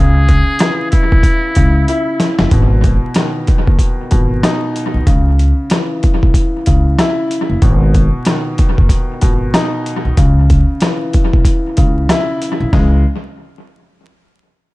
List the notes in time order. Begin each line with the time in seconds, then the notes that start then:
Already playing: C#2 C#3 G#4
0.29 kick, closed hi-hat
0.59 E3, cross-stick, snare, closed hi-hat
0.91 E4, kick, closed hi-hat
1.12 B1, kick
1.23 kick, closed hi-hat
1.55 C#2 C#3, kick, closed hi-hat
1.88 E4, closed hi-hat
2.20 snare, closed hi-hat
2.39 F#1, snare
2.51 G#1 B2, kick, closed hi-hat
2.84 kick, closed hi-hat
3.14 D#3, cross-stick, snare, closed hi-hat
3.47 kick, closed hi-hat
3.67 F#1, kick
3.79 kick, closed hi-hat
4.11 G#1 B2, kick, closed hi-hat
4.43 D#4, cross-stick, snare, closed hi-hat
4.76 closed hi-hat
4.94 B1
5.07 C#2 C#3, kick, closed hi-hat
5.39 closed hi-hat
5.70 E3, cross-stick, snare, closed hi-hat
6.03 kick, closed hi-hat
6.23 B1, kick
6.34 kick, closed hi-hat
6.66 C#2 C#3, kick, closed hi-hat
6.99 E4, cross-stick, snare, closed hi-hat
7.31 closed hi-hat
7.50 F#1
7.62 G#1 B2, kick, closed hi-hat
7.94 kick, closed hi-hat
8.25 D#3, cross-stick, snare, closed hi-hat
8.58 kick, closed hi-hat
8.78 F#1, kick
8.89 kick, closed hi-hat
9.21 G#1 B2, kick, closed hi-hat
9.54 D#4, cross-stick, snare, closed hi-hat
9.86 closed hi-hat
10.05 B1
10.17 C#2 C#3, kick, closed hi-hat
10.50 kick, closed hi-hat
10.81 E3, cross-stick, snare, closed hi-hat
11.13 kick, closed hi-hat
11.33 B1, kick
11.45 kick, closed hi-hat
11.77 C#2 C#3, kick, closed hi-hat
12.09 E4, cross-stick, snare, closed hi-hat
12.42 closed hi-hat
12.60 B1
12.73 C#2 C#3 E3 G#3, kick, snare